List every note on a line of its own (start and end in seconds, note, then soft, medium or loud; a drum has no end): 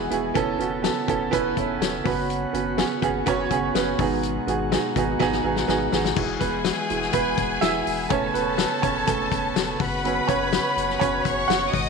0.00 0.34 E3 medium
0.00 0.35 E3 medium
0.00 0.34 G#3 soft
0.00 0.10 B3 loud
0.00 0.11 E4 loud
0.00 0.11 F#4 loud
0.00 0.34 F#4 medium
0.00 0.12 G#4 loud
0.00 0.38 B4 medium
0.10 0.31 E1 medium
0.10 0.30 B3 medium
0.10 0.31 E4 medium
0.10 0.31 F#4 medium
0.10 0.31 G#4 medium
0.10 closed hi-hat medium
0.34 0.55 E1 medium
0.34 2.04 C#3 medium
0.34 1.04 E3 medium
0.34 0.54 B3 loud
0.34 2.04 B3 medium
0.34 0.55 C#4 medium
0.34 0.55 E4 medium
0.34 2.03 A4 medium
0.34 0.55 A4 loud
0.34 kick loud
0.34 closed hi-hat medium
0.58 0.89 E1 medium
0.58 0.79 B3 medium
0.58 0.79 C#4 medium
0.58 0.79 E4 medium
0.58 0.80 F#4 medium
0.58 closed hi-hat medium
0.82 1.03 B3 medium
0.82 1.03 C#4 medium
0.82 1.03 E4 medium
0.82 1.04 A4 medium
0.82 snare loud
0.82 closed hi-hat medium
1.07 1.28 E1 medium
1.07 1.27 B3 medium
1.07 1.28 C#4 medium
1.07 1.28 E4 medium
1.07 1.28 A4 medium
1.07 kick medium
1.07 closed hi-hat medium
1.31 1.53 E1 loud
1.31 1.51 B3 loud
1.31 1.52 C#4 loud
1.31 1.52 E4 loud
1.31 1.52 B4 loud
1.31 kick medium
1.31 closed hi-hat medium
1.57 1.77 E1 loud
1.57 1.79 C#5 medium
1.57 1.80 E5 medium
1.57 kick medium
1.57 closed hi-hat medium
1.80 2.00 E1 loud
1.80 2.27 A4 medium
1.80 2.27 C#5 medium
1.80 snare medium
1.80 closed hi-hat medium
2.04 2.45 F#1 loud
2.04 3.98 C#3 medium
2.04 2.44 B3 medium
2.04 3.98 B3 medium
2.04 2.44 C#4 medium
2.04 2.44 F#4 medium
2.04 6.13 F#4 medium
2.04 2.44 B4 medium
2.04 kick medium
2.04 open hi-hat medium
2.30 closed hi-hat medium
2.53 2.83 F#1 medium
2.53 2.73 B3 medium
2.53 2.73 C#4 medium
2.53 2.73 F#4 medium
2.53 2.74 B4 medium
2.53 closed hi-hat medium
2.77 2.97 B3 medium
2.77 2.97 C#4 medium
2.77 2.97 F#4 medium
2.77 2.98 G#4 medium
2.77 snare loud
2.77 closed hi-hat medium
3.02 3.22 F#1 medium
3.02 3.21 B3 medium
3.02 3.22 C#4 medium
3.02 3.22 F#4 medium
3.02 3.22 G#4 loud
3.02 kick medium
3.02 closed hi-hat medium
3.26 3.47 F#1 loud
3.26 3.45 B3 loud
3.26 3.46 C#4 loud
3.26 3.46 F#4 loud
3.26 3.46 C#5 loud
3.26 kick medium
3.26 closed hi-hat loud
3.50 3.70 F#1 loud
3.50 3.70 B3 medium
3.50 3.70 C#4 medium
3.50 3.70 F#4 medium
3.50 3.71 G#4 medium
3.50 kick medium
3.50 closed hi-hat medium
3.74 3.95 F#1 loud
3.74 3.94 B3 medium
3.74 3.94 C#4 medium
3.74 3.95 F#4 medium
3.74 3.95 B4 medium
3.74 snare medium
3.74 closed hi-hat medium
3.98 4.38 G#1 loud
3.98 4.68 G#2 medium
3.98 6.15 B2 medium
3.98 6.14 G#3 medium
3.98 4.38 B3 medium
3.98 4.38 D#4 medium
3.98 4.39 F#4 medium
3.98 4.39 G#4 medium
3.98 kick medium
3.98 open hi-hat medium
4.23 closed hi-hat medium
4.47 4.77 G#1 loud
4.47 4.67 B3 medium
4.47 4.67 D#4 medium
4.47 4.67 F#4 medium
4.47 4.68 G#4 medium
4.47 closed hi-hat medium
4.71 4.91 B3 medium
4.71 4.91 D#4 medium
4.71 4.91 F#4 medium
4.71 4.92 G#4 medium
4.71 snare loud
4.71 closed hi-hat medium
4.96 5.16 G#1 loud
4.96 5.15 B3 medium
4.96 5.15 D#4 medium
4.96 5.16 F#4 medium
4.96 5.16 G#4 medium
4.96 kick medium
4.96 closed hi-hat medium
5.19 5.40 G#1 loud
5.19 5.39 B3 loud
5.19 5.39 D#4 loud
5.19 5.40 F#4 loud
5.19 5.40 G#4 loud
5.19 kick medium
5.19 snare medium
5.32 snare soft
5.44 5.64 G#1 medium
5.44 5.63 B3 medium
5.44 5.64 D#4 medium
5.44 5.64 F#4 medium
5.44 5.64 G#4 medium
5.56 snare medium
5.68 5.88 G#1 loud
5.68 5.87 B3 medium
5.68 5.88 D#4 medium
5.68 5.88 F#4 medium
5.68 5.88 G#4 loud
5.68 snare medium
5.92 6.12 G#1 loud
5.92 6.12 B3 medium
5.92 6.12 D#4 medium
5.92 6.12 F#4 medium
5.92 6.12 G#4 medium
5.92 snare medium
6.05 snare medium
6.16 6.37 E1 medium
6.16 8.09 E3 medium
6.16 6.86 F#3 medium
6.16 6.86 G#3 medium
6.16 8.09 G#3 medium
6.16 6.86 E4 medium
6.16 8.09 F#4 medium
6.16 8.07 G#4 medium
6.16 8.06 G#5 medium
6.16 kick loud
6.16 crash loud
6.40 6.71 E1 loud
6.40 7.10 B3 medium
6.40 7.11 B4 medium
6.40 kick medium
6.40 closed hi-hat medium
6.65 snare loud
6.65 closed hi-hat medium
6.90 7.10 E1 medium
6.90 7.11 F#3 soft
6.90 7.12 G#3 soft
6.90 7.12 E4 medium
6.90 closed hi-hat medium
7.02 snare soft
7.13 7.33 E1 loud
7.13 7.59 B3 medium
7.13 7.63 B4 loud
7.13 kick medium
7.13 closed hi-hat medium
7.38 7.58 E1 loud
7.38 kick medium
7.38 closed hi-hat medium
7.61 7.82 E1 loud
7.61 8.08 E4 medium
7.61 8.12 E5 loud
7.61 snare loud
7.61 closed hi-hat medium
7.87 8.07 E1 loud
7.87 open hi-hat medium
8.09 8.30 E1 loud
8.09 11.70 C#3 medium
8.09 9.05 A3 medium
8.09 8.34 B3 medium
8.09 9.78 B3 soft
8.09 8.34 C#4 medium
8.09 9.76 A4 medium
8.09 9.79 A4 medium
8.09 8.35 C#5 loud
8.09 9.76 A5 medium
8.09 kick loud
8.09 closed hi-hat medium
8.34 8.64 E1 loud
8.34 8.58 B3 medium
8.34 8.56 B4 medium
8.34 closed hi-hat medium
8.58 8.82 B3 medium
8.58 8.83 B4 medium
8.58 snare loud
8.58 closed hi-hat medium
8.82 9.03 E1 medium
8.82 9.06 C#4 medium
8.82 9.05 C#5 loud
8.82 kick medium
8.82 closed hi-hat medium
9.07 9.27 E1 loud
9.07 9.76 A3 medium
9.07 9.29 B3 soft
9.07 9.29 C#4 medium
9.07 9.76 A4 medium
9.07 kick medium
9.07 closed hi-hat loud
9.31 9.51 E1 loud
9.31 kick medium
9.31 closed hi-hat medium
9.56 9.76 E1 loud
9.56 snare loud
9.56 closed hi-hat medium
9.79 10.19 F#1 loud
9.79 11.71 B3 medium
9.79 11.89 F#4 medium
9.79 11.22 B4 medium
9.79 11.22 B5 medium
9.79 kick loud
9.79 open hi-hat medium
10.04 11.70 F#3 medium
10.04 11.70 B3 soft
10.04 10.28 C#4 medium
10.04 closed hi-hat medium
10.28 10.58 F#1 loud
10.28 10.98 C#4 medium
10.28 10.96 C#5 medium
10.28 kick medium
10.28 closed hi-hat medium
10.53 snare loud
10.53 closed hi-hat medium
10.77 10.96 F#1 loud
10.77 closed hi-hat medium
10.89 snare soft
11.00 11.21 F#1 loud
11.00 11.47 C#4 medium
11.00 11.45 C#5 loud
11.00 kick medium
11.00 closed hi-hat medium
11.25 11.45 F#1 loud
11.25 11.72 C#5 medium
11.25 11.72 C#6 medium
11.25 kick medium
11.25 closed hi-hat medium
11.48 11.69 F#1 loud
11.48 11.89 F#4 medium
11.48 11.89 F#5 loud
11.48 snare loud
11.48 closed hi-hat medium
11.73 11.89 G#1 loud
11.73 11.89 B2 medium
11.73 11.89 G#3 medium
11.73 11.89 D#5 medium
11.73 11.89 D#6 medium
11.73 kick medium
11.73 open hi-hat medium